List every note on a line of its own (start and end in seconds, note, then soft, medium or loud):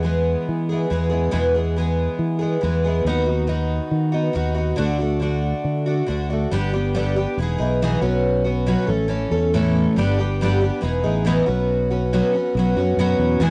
0.00 0.35 E2 medium
0.00 0.68 E3 medium
0.04 0.69 G#3 medium
0.04 0.71 B3 medium
0.04 0.68 G#4 medium
0.49 0.85 E3 medium
0.69 0.90 G#3 soft
0.69 0.92 B3 soft
0.69 0.91 G#4 soft
0.73 0.89 E3 soft
0.90 1.28 E2 medium
0.90 1.12 E3 medium
0.90 1.11 G#3 medium
0.90 1.10 B3 medium
0.90 1.08 G#4 medium
1.10 1.31 E3 soft
1.10 1.31 G#3 soft
1.10 1.31 B3 soft
1.10 1.32 G#4 medium
1.31 1.54 E2 medium
1.31 2.07 E2 medium
1.31 1.55 B2 medium
1.31 1.55 E3 medium
1.31 1.55 G#3 medium
1.31 1.55 B3 medium
1.31 1.53 G#4 medium
1.54 1.75 E3 soft
1.54 1.77 G#3 soft
1.54 1.77 B3 soft
1.54 1.77 G#4 soft
1.76 2.42 E3 medium
1.76 2.41 G#3 medium
1.76 2.40 B3 medium
1.76 2.38 G#4 medium
2.19 2.56 E3 medium
2.39 2.62 G#3 soft
2.39 2.63 B3 soft
2.39 2.62 G#4 medium
2.43 2.60 E3 soft
2.61 3.00 E2 medium
2.61 2.84 E3 medium
2.61 2.84 G#3 medium
2.61 2.84 B3 medium
2.61 2.83 G#4 medium
2.84 3.06 E3 soft
2.84 3.06 G#3 soft
2.84 3.05 B3 soft
2.84 3.06 G#4 medium
3.05 3.79 D#2 medium
3.05 3.28 D#3 medium
3.05 3.28 B3 medium
3.05 3.27 D#4 medium
3.09 3.24 F#4 medium
3.26 3.46 B3 soft
3.26 3.47 D#4 soft
3.26 3.48 F#4 medium
3.47 4.13 D#3 medium
3.47 4.13 B3 medium
3.47 4.13 D#4 medium
3.47 4.11 F#4 medium
3.91 4.29 D#3 medium
4.12 4.34 B3 soft
4.12 4.34 D#4 soft
4.12 4.34 F#4 medium
4.33 4.72 D#2 medium
4.33 4.56 D#3 medium
4.33 4.57 B3 medium
4.33 4.55 D#4 medium
4.33 4.53 F#4 medium
4.54 4.77 B3 soft
4.54 4.77 D#4 soft
4.54 4.77 F#4 medium
4.76 5.52 D2 medium
4.76 4.99 D3 medium
4.76 5.00 A3 medium
4.76 4.99 D4 medium
4.76 4.97 F#4 medium
4.99 5.20 A3 soft
4.99 5.21 D4 soft
4.99 5.21 F#4 medium
5.20 5.86 D3 medium
5.20 5.87 A3 medium
5.20 5.86 D4 medium
5.20 5.85 F#4 medium
5.65 6.02 D3 medium
5.86 6.06 A3 soft
5.86 6.07 D4 soft
5.86 6.08 F#4 soft
6.06 6.45 D2 medium
6.06 6.29 D3 medium
6.06 6.30 A3 medium
6.06 6.29 D4 medium
6.06 6.29 F#4 medium
6.30 6.52 A3 soft
6.30 6.52 D4 soft
6.30 6.52 F#4 medium
6.51 7.25 G1 medium
6.51 6.73 G2 medium
6.51 6.73 D3 medium
6.51 6.74 G3 medium
6.51 6.74 B3 medium
6.51 6.72 D4 medium
6.51 6.72 G4 medium
6.73 6.93 G3 soft
6.73 6.95 B3 soft
6.73 6.95 D4 medium
6.73 6.95 G4 medium
6.94 7.16 G2 medium
6.94 7.16 D3 medium
6.94 7.16 G3 medium
6.94 7.16 B3 medium
6.94 7.15 D4 medium
6.94 7.15 G4 medium
7.16 7.38 G3 soft
7.16 7.38 B3 soft
7.16 7.38 D4 medium
7.16 7.38 G4 soft
7.37 7.56 E1 medium
7.37 7.60 E3 medium
7.37 7.60 B3 medium
7.42 7.58 D#4 medium
7.42 7.57 G#4 medium
7.58 7.96 B1 medium
7.58 7.81 E3 soft
7.58 7.82 B3 soft
7.58 7.81 D#4 medium
7.58 7.80 G#4 medium
7.82 8.03 E2 medium
7.82 8.02 B2 medium
7.82 8.02 E3 medium
7.82 8.01 B3 medium
7.82 8.01 D#4 medium
7.82 8.01 G#4 medium
8.01 8.75 B1 medium
8.01 8.46 B2 soft
8.01 8.46 F#3 medium
8.01 8.45 B3 medium
8.01 8.45 C#4 medium
8.01 8.43 F#4 medium
8.44 8.67 B3 soft
8.44 8.67 C#4 soft
8.44 8.66 F#4 medium
8.66 8.88 B2 medium
8.66 8.88 F#3 medium
8.66 8.89 B3 medium
8.66 8.87 C#4 medium
8.66 8.86 F#4 loud
8.87 9.25 A1 medium
8.87 9.07 A3 soft
8.87 9.08 C#4 medium
8.87 9.09 A4 medium
9.08 9.31 E3 medium
9.08 9.31 A3 medium
9.08 9.31 C#4 medium
9.08 9.30 A4 medium
9.31 9.86 E2 medium
9.31 9.53 A3 soft
9.31 9.54 C#4 medium
9.31 9.53 A4 medium
9.54 9.97 A2 medium
9.54 9.97 E3 medium
9.54 9.97 A3 medium
9.54 9.97 C#4 loud
9.54 9.98 A4 medium
9.96 10.70 G1 medium
9.96 10.18 G2 medium
9.96 10.19 D3 medium
9.96 10.18 G3 medium
9.96 10.19 B3 medium
9.96 10.18 D4 loud
9.96 10.18 G4 medium
10.19 10.41 G3 soft
10.19 10.41 B3 medium
10.19 10.40 D4 soft
10.19 10.40 G4 medium
10.41 10.62 G2 medium
10.41 10.63 D3 medium
10.41 10.62 G3 medium
10.41 10.61 B3 medium
10.41 10.60 D4 medium
10.41 10.60 G4 medium
10.61 10.80 G3 soft
10.61 10.80 B3 soft
10.61 10.83 D4 soft
10.61 10.82 G4 medium
10.81 11.01 E1 loud
10.81 11.03 E3 medium
10.81 11.04 B3 medium
10.81 11.02 D#4 medium
10.81 11.03 G#4 medium
11.04 11.41 A1 medium
11.04 11.25 E3 soft
11.04 11.26 B3 medium
11.04 11.25 D#4 medium
11.04 11.25 G#4 medium
11.25 11.47 E2 medium
11.25 11.47 B2 medium
11.25 11.47 E3 loud
11.25 11.46 B3 loud
11.25 11.46 D#4 loud
11.25 11.46 G#4 medium
11.46 12.21 B1 loud
11.46 11.91 B2 medium
11.46 11.91 F#3 medium
11.46 11.90 B3 medium
11.46 11.90 C#4 medium
11.46 11.89 F#4 medium
11.91 12.13 B3 soft
11.91 12.12 C#4 medium
11.91 12.12 F#4 medium
12.13 12.34 B2 medium
12.13 12.34 F#3 medium
12.13 12.35 B3 medium
12.13 12.33 C#4 medium
12.13 12.32 F#4 medium
12.33 12.56 B3 soft
12.33 12.55 C#4 medium
12.33 12.55 F#4 medium
12.55 12.73 B1 loud
12.55 12.77 F#3 medium
12.55 12.78 B3 medium
12.55 12.77 C#4 medium
12.59 12.75 F#4 medium
12.76 12.95 F#2 medium
12.76 12.99 C#4 medium
12.76 12.98 F#4 medium
12.80 12.98 B3 soft
12.97 13.17 F#2 medium
12.97 13.39 B2 medium
12.97 13.41 F#3 medium
12.97 13.41 B3 loud
12.97 13.41 C#4 medium
12.97 13.42 F#4 loud
13.18 13.38 E2 medium
13.40 13.50 E2 loud
13.40 13.50 E2 medium
13.40 13.50 B2 medium
13.40 13.50 E3 medium
13.40 13.50 G#3 medium
13.40 13.50 B3 medium
13.40 13.50 G#4 loud